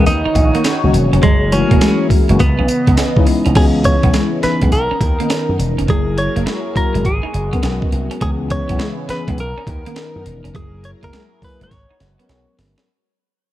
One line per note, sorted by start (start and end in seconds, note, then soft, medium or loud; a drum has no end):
0.06 0.22 D#2 loud
0.06 1.22 D#3 medium
0.06 1.21 D#4 medium
0.06 0.90 D#4 loud
0.06 1.21 F#4 medium
0.06 1.22 C#5 medium
0.06 closed hi-hat medium
0.06 tambourine medium
0.25 0.32 D#4 medium
0.25 muted slap bass stroke soft
0.35 0.50 A#1 loud
0.35 muted clean electric guitar stroke medium
0.35 kick medium
0.35 closed hi-hat medium
0.35 tambourine medium
0.55 0.62 A#3 medium
0.55 closed hi-hat medium
0.64 0.78 C#4 medium
0.64 snare loud
0.64 closed hi-hat medium
0.64 tambourine loud
0.83 0.92 C#2 loud
0.83 1.23 D#3 loud
0.83 1.23 F#3 medium
0.83 1.23 A#3 medium
0.83 1.23 C#4 medium
0.83 1.23 F#4 loud
0.94 1.09 E1 medium
0.94 muted clean electric guitar stroke soft
0.94 closed hi-hat medium
0.94 tambourine medium
1.13 1.21 F1 medium
1.13 1.20 C#4 medium
1.13 closed hi-hat medium
1.22 1.61 F#1 loud
1.22 1.36 F#3 medium
1.22 2.38 F#3 medium
1.22 1.53 G#3 medium
1.22 2.38 E4 medium
1.22 2.38 G#4 medium
1.22 2.38 A#4 medium
1.22 kick loud
1.22 closed hi-hat medium
1.52 2.06 E3 medium
1.52 2.06 G#3 medium
1.52 1.61 A3 medium
1.52 2.06 C#4 loud
1.52 2.07 C#4 medium
1.52 2.07 F#4 loud
1.52 muted clean electric guitar stroke soft
1.52 closed hi-hat medium
1.52 tambourine medium
1.59 2.10 A#3 medium
1.71 1.79 E1 medium
1.71 1.78 A#3 medium
1.71 kick medium
1.71 closed hi-hat medium
1.81 1.95 G#3 loud
1.81 snare loud
1.81 closed hi-hat medium
1.81 tambourine medium
2.10 muted clean electric guitar stroke soft
2.10 muted slap bass stroke medium
2.10 kick loud
2.10 open hi-hat medium
2.10 tambourine medium
2.29 2.37 F#1 medium
2.29 2.39 E3 medium
2.29 2.36 G#3 medium
2.29 2.39 G#3 medium
2.29 2.40 A#3 medium
2.29 2.40 C#4 medium
2.29 2.40 F#4 loud
2.29 closed hi-hat medium
2.39 2.54 C#2 loud
2.39 3.54 C#3 medium
2.39 3.54 E3 medium
2.39 3.54 B3 medium
2.39 3.23 B3 loud
2.39 3.54 D#5 medium
2.39 kick medium
2.39 closed hi-hat medium
2.39 tambourine medium
2.59 2.67 B1 medium
2.59 2.65 C#4 medium
2.68 muted clean electric guitar stroke soft
2.68 closed hi-hat medium
2.68 tambourine medium
2.87 2.95 C#2 medium
2.87 2.95 B3 medium
2.87 kick medium
2.87 closed hi-hat medium
2.97 3.11 C#4 medium
2.97 snare loud
2.97 closed hi-hat medium
2.97 tambourine loud
3.16 3.25 C#3 loud
3.16 3.56 G#3 medium
3.16 3.55 B3 medium
3.16 3.55 C#4 medium
3.16 3.56 D#4 medium
3.16 3.56 E4 loud
3.16 kick loud
3.26 muted clean electric guitar stroke soft
3.26 open hi-hat medium
3.26 tambourine medium
3.46 3.54 C2 medium
3.46 3.53 C#4 medium
3.46 closed hi-hat medium
3.55 3.94 C#2 loud
3.55 4.71 C#3 medium
3.55 4.20 E3 medium
3.55 4.71 G#3 medium
3.55 4.20 B3 medium
3.55 5.87 B3 medium
3.55 3.69 C#4 medium
3.55 4.21 C#4 medium
3.55 4.71 E4 medium
3.55 3.65 F#4 medium
3.55 3.64 G#4 loud
3.55 kick loud
3.55 closed hi-hat medium
3.55 crash loud
3.63 4.24 G#4 medium
3.84 4.39 C#5 loud
3.84 muted clean electric guitar stroke soft
3.84 kick medium
3.84 closed hi-hat medium
3.84 tambourine medium
4.03 4.12 B1 medium
4.03 4.11 B3 medium
4.03 kick medium
4.03 closed hi-hat medium
4.13 4.27 G#3 medium
4.13 snare loud
4.13 closed hi-hat medium
4.13 tambourine medium
4.43 4.72 E3 medium
4.43 4.72 B3 medium
4.43 4.72 C#4 medium
4.43 4.73 D#4 medium
4.43 4.72 B4 medium
4.43 muted clean electric guitar stroke soft
4.43 muted slap bass stroke soft
4.43 snare medium
4.43 closed hi-hat medium
4.43 tambourine medium
4.62 4.70 B1 medium
4.62 4.69 G#3 medium
4.62 kick medium
4.62 closed hi-hat medium
4.72 4.87 B1 loud
4.72 5.88 D#4 medium
4.72 5.87 A#4 medium
4.72 5.56 A#4 medium
4.72 closed hi-hat medium
4.72 tambourine medium
4.91 4.98 C#4 medium
4.91 muted slap bass stroke medium
5.01 5.16 D#2 medium
5.01 muted clean electric guitar stroke soft
5.01 kick loud
5.01 closed hi-hat medium
5.01 tambourine medium
5.20 5.71 D#3 medium
5.20 5.27 A#3 medium
5.20 5.71 B3 medium
5.20 5.71 C#4 medium
5.20 5.72 A#4 medium
5.20 closed hi-hat medium
5.30 5.43 C#4 medium
5.30 snare loud
5.30 closed hi-hat medium
5.30 tambourine loud
5.49 5.57 F#2 medium
5.59 5.75 E1 medium
5.59 muted clean electric guitar stroke soft
5.59 closed hi-hat medium
5.59 tambourine medium
5.78 5.87 F1 medium
5.78 5.85 C#4 medium
5.78 closed hi-hat medium
5.88 6.27 F#1 loud
5.88 6.53 F#3 medium
5.88 7.04 F#3 medium
5.88 6.02 F#3 medium
5.88 6.53 A#3 medium
5.88 6.53 E4 medium
5.88 7.04 E4 medium
5.88 7.04 G#4 medium
5.88 6.53 G#4 medium
5.88 6.19 G#4 medium
5.88 7.04 A#4 medium
5.88 kick loud
5.88 closed hi-hat medium
6.17 6.76 C#5 loud
6.17 muted clean electric guitar stroke soft
6.17 closed hi-hat medium
6.36 6.45 F#1 medium
6.36 6.43 A#3 medium
6.36 closed hi-hat medium
6.46 6.60 G#3 medium
6.46 snare loud
6.46 closed hi-hat medium
6.75 7.05 F#3 medium
6.75 7.05 A#3 medium
6.75 7.05 E4 medium
6.75 7.06 F#4 medium
6.75 7.06 A#4 medium
6.75 muted clean electric guitar stroke soft
6.75 muted slap bass stroke soft
6.75 kick loud
6.75 closed hi-hat medium
6.94 7.03 F#1 medium
6.94 7.02 G#3 medium
6.94 closed hi-hat medium
7.05 7.20 G#1 loud
7.05 8.20 G#3 medium
7.05 8.20 B3 medium
7.05 8.20 F#4 medium
7.05 7.89 G#4 medium
7.05 kick medium
7.05 closed hi-hat medium
7.23 7.30 D#4 medium
7.23 muted slap bass stroke medium
7.34 7.49 F#1 loud
7.34 muted clean electric guitar stroke soft
7.34 closed hi-hat medium
7.53 8.04 F#3 medium
7.53 7.60 B3 medium
7.53 8.04 B3 medium
7.53 8.04 C#4 medium
7.53 8.05 A#4 medium
7.53 kick medium
7.53 closed hi-hat soft
7.63 7.79 B1 loud
7.63 7.76 C#4 medium
7.63 snare loud
7.63 closed hi-hat medium
7.82 kick loud
7.92 8.08 C2 loud
7.92 muted clean electric guitar stroke soft
7.92 closed hi-hat medium
8.11 8.18 C#4 medium
8.11 closed hi-hat soft
8.21 8.60 C#2 loud
8.21 9.37 C#3 medium
8.21 8.86 E3 medium
8.21 9.37 G#3 medium
8.21 8.86 B3 medium
8.21 9.37 B3 medium
8.21 8.34 C#4 medium
8.21 8.86 C#4 medium
8.21 9.37 E4 medium
8.21 8.30 G#4 loud
8.21 8.87 G#4 loud
8.21 kick loud
8.21 closed hi-hat medium
8.50 9.10 C#5 loud
8.50 muted clean electric guitar stroke soft
8.50 kick medium
8.50 closed hi-hat medium
8.69 8.78 B1 loud
8.69 8.76 B3 medium
8.69 kick medium
8.69 closed hi-hat medium
8.79 8.93 G#3 loud
8.79 snare loud
8.79 closed hi-hat medium
9.09 9.38 E3 medium
9.09 9.38 B3 medium
9.09 9.39 C#4 medium
9.09 9.39 G#4 medium
9.09 9.40 B4 loud
9.09 muted slap bass stroke soft
9.09 muted clean electric guitar stroke soft
9.09 snare medium
9.09 closed hi-hat medium
9.28 9.36 B1 medium
9.28 9.35 G#3 medium
9.28 kick medium
9.28 closed hi-hat medium
9.38 9.53 B1 loud
9.38 10.53 B3 medium
9.38 10.54 D#4 medium
9.38 10.53 A#4 medium
9.38 10.23 A#4 loud
9.38 closed hi-hat medium
9.58 9.64 C#4 medium
9.67 9.82 D#2 loud
9.67 muted clean electric guitar stroke medium
9.67 kick medium
9.67 closed hi-hat medium
9.86 10.37 D#3 medium
9.86 9.93 A#3 medium
9.86 10.37 B3 medium
9.86 10.38 C#4 medium
9.86 10.38 A#4 medium
9.86 closed hi-hat medium
9.96 10.10 C#4 medium
9.96 snare loud
9.96 closed hi-hat medium
10.16 10.24 F#2 loud
10.26 10.41 E1 medium
10.26 muted clean electric guitar stroke soft
10.26 closed hi-hat medium
10.44 10.53 F1 medium
10.44 10.51 C#4 medium
10.44 closed hi-hat medium
10.54 10.93 F#1 loud
10.54 11.70 F#3 medium
10.54 10.68 F#3 medium
10.54 11.19 F#3 medium
10.54 11.20 A#3 medium
10.54 11.70 E4 medium
10.54 11.20 E4 medium
10.54 11.70 G#4 medium
10.54 10.85 G#4 loud
10.54 11.20 G#4 medium
10.54 11.70 A#4 medium
10.54 kick loud
10.54 closed hi-hat medium
10.84 10.90 C#5 medium
10.84 muted clean electric guitar stroke soft
10.84 closed hi-hat medium
11.03 11.11 F#1 medium
11.03 11.10 A#3 medium
11.03 11.44 A#4 loud
11.03 kick medium
11.03 closed hi-hat medium
11.13 11.26 G#3 medium
11.13 snare loud
11.13 closed hi-hat medium
11.42 11.71 F#3 medium
11.42 11.71 A#3 medium
11.42 11.71 E4 medium
11.42 11.72 A#4 medium
11.42 11.63 B4 loud
11.42 muted clean electric guitar stroke soft
11.42 muted slap bass stroke soft
11.42 kick loud
11.42 open hi-hat medium
11.61 11.69 F#1 medium
11.61 11.68 G#3 medium
11.61 12.56 C#5 loud
11.61 closed hi-hat medium
11.71 11.86 G#1 loud
11.71 12.87 G#3 medium
11.71 12.86 B3 medium
11.71 12.87 F#4 medium
11.71 kick medium
11.71 snare medium
11.71 closed hi-hat medium
11.91 11.97 D#4 medium
12.00 12.16 F#1 medium
12.00 muted clean electric guitar stroke soft
12.00 snare medium
12.00 closed hi-hat medium
12.19 12.70 F#3 medium
12.19 12.26 B3 medium
12.19 12.70 B3 medium
12.19 12.71 C#4 medium
12.19 12.71 A#4 medium
12.19 closed hi-hat medium
12.29 12.44 B1 medium
12.29 12.43 C#4 medium
12.29 snare medium
12.29 closed hi-hat medium
12.58 12.74 G1 medium
12.58 muted clean electric guitar stroke soft
12.58 snare medium
12.58 open hi-hat medium
12.78 12.85 C#4 medium
12.78 snare medium
12.78 closed hi-hat soft